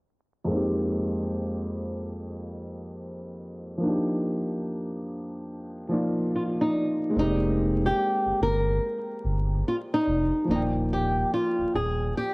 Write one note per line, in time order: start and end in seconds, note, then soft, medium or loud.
0.44 3.76 F2 medium
0.44 3.78 G#3 medium
0.49 3.78 A#3 medium
0.49 3.80 C4 medium
0.53 3.81 D#4 medium
0.53 3.82 G4 medium
3.78 5.85 F3 medium
3.78 5.86 A#3 medium
3.83 5.87 D4 medium
3.83 5.89 D#4 medium
3.89 5.90 G4 medium
5.89 7.15 F3 medium
5.89 7.11 A#3 soft
5.89 7.16 D5 medium
5.93 7.17 D#4 soft
5.93 7.18 F4 medium
6.36 6.42 F4 medium
6.61 7.18 D#4 medium
7.10 10.42 G#3 medium
7.10 10.44 A#3 soft
7.16 7.91 F1 loud
7.16 10.46 C4 medium
7.16 10.47 D#4 soft
7.16 7.88 D#4 loud
7.21 10.48 G4 medium
7.86 8.42 G4 medium
8.26 8.32 G1 soft
8.41 8.79 G1 medium
8.41 9.63 A#4 loud
9.25 9.62 G1 loud
9.68 9.75 F4 medium
9.94 10.46 D#4 loud
10.07 10.31 F1 loud
10.45 11.24 D#1 loud
10.45 12.34 F3 medium
10.45 12.34 A#3 medium
10.50 10.62 D#4 medium
10.50 12.34 D#4 medium
10.50 12.34 D5 medium
10.55 12.34 G5 medium
10.93 11.33 G4 medium
11.34 11.75 F4 medium
11.59 11.65 D#1 soft
11.75 12.12 D#1 medium
11.75 12.17 G#4 medium
12.17 12.34 G4 medium